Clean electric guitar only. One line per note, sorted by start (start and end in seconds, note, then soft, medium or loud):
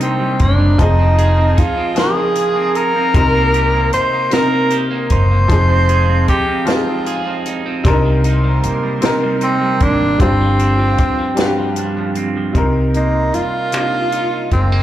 0.00 0.87 C3 medium
0.00 0.19 G3 medium
0.00 0.38 A#3 medium
0.00 1.57 D#4 medium
0.20 0.58 G3 medium
0.39 0.87 A#3 medium
0.59 0.78 G3 medium
0.78 1.96 F3 medium
0.99 1.37 C4 medium
1.18 2.35 G#4 medium
1.38 1.77 C4 medium
1.57 2.76 D#4 medium
1.77 2.16 C4 medium
1.97 3.22 F3 medium
2.17 2.55 C4 medium
2.36 3.22 G#4 medium
2.56 2.95 C4 medium
2.76 3.93 D#4 medium
2.96 3.34 C4 medium
3.15 4.31 C3 medium
3.35 3.73 A#3 medium
3.55 4.70 G4 medium
3.74 4.12 A#3 medium
3.93 5.10 D#4 medium
4.13 4.51 A#3 medium
4.33 5.58 C3 medium
4.52 4.89 A#3 medium
4.72 5.58 G4 medium
4.91 5.30 A#3 medium
5.11 6.29 D#4 medium
5.31 5.58 A#3 medium
5.50 6.67 F3 medium
5.69 6.09 C4 medium
5.89 7.06 G#4 medium
6.09 6.48 C4 medium
6.29 7.46 D#4 medium
6.49 6.87 C4 medium
6.68 7.93 F3 medium
6.87 7.26 C4 medium
7.07 7.93 G#4 medium
7.26 7.65 C4 medium
7.46 8.25 D#4 medium
7.66 8.63 C4 medium
7.85 9.01 C3 medium
8.05 8.43 G3 medium
8.25 9.40 D#4 medium
8.44 8.83 G3 medium
8.63 9.80 A#3 medium
8.83 9.23 G3 medium
9.02 10.28 C3 medium
9.23 9.61 G3 medium
9.42 10.28 D#4 medium
9.61 10.00 G3 medium
9.81 10.28 A#3 medium
10.00 10.41 G3 medium
10.21 11.38 G2 medium
10.41 10.78 F3 medium
10.60 11.77 D4 medium
10.79 11.17 F3 medium
10.99 12.16 C4 medium
11.19 11.58 F3 medium
11.39 12.64 G2 medium
11.59 11.96 F3 medium
11.78 12.64 D4 medium
11.97 12.35 F3 medium
12.17 12.96 C4 medium
12.37 12.64 F3 medium
12.56 14.83 C3 medium
12.96 13.72 A#3 soft
13.35 14.83 G3 medium
13.73 14.51 A#3 medium
14.13 14.83 D#4 medium
14.51 14.72 G#3 medium
14.72 14.83 A#3 medium